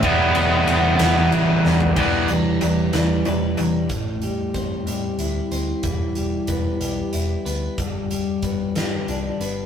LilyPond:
<<
  \new Staff \with { instrumentName = "Lead electric guitar" } { \time 6/8 \key e \phrygian \tempo 4. = 62 <b b'>2 r4 | r2. | r2. | r2. |
r2. | }
  \new Staff \with { instrumentName = "Clean electric guitar" } { \time 6/8 \key e \phrygian r2. | <e g d' e' b'>8 <d' e' b'>8 <g d' e' b'>8 <e g d' e' b'>8 <g d' e' b'>4 | a,8 g8 c'8 g8 e'8 c'8 | e8 g8 b8 g8 e'8 b8 |
g,8 g8 b8 g8 d'8 b8 | }
  \new Staff \with { instrumentName = "Overdriven electric guitar" } { \clef bass \time 6/8 \key e \phrygian <e g b e'>2. | <e g b>8 <e g>8 <e g>8 <e g>8 <e g>8 <e g>8 | r2. | r2. |
r2. | }
  \new Staff \with { instrumentName = "Picked electric bass" } { \clef bass \time 6/8 \key e \phrygian e,,8 e,,8 e,,8 e,,8 a,,8 e,,8 | e,,8 e,,8 e,,8 e,8 e,,8 e,,8 | a,,4 a,,8 a,8 d,8 d,8 | e,,8 e,,8 e,,8 b,,8 e,,8 d,8 |
g,,4 g,,8 g,8 c,8 g,,8 | }
  \new DrumStaff \with { instrumentName = "Drums" } \drummode { \time 6/8 <bd cymr>8 cymr8 cymr8 <cymr sn>8 cymr8 sn16 tomfh16 | <cymc bd>8 hh8 hh8 <hh sn>8 hh8 hh8 | <hh bd>8 hh8 <hh bd>8 hh8 hh8 hh8 | <hh bd>8 hh8 <hh bd>8 hh8 hh8 hh8 |
<hh bd>8 hh8 <hh bd>8 <hh sn>8 hh8 hh8 | }
>>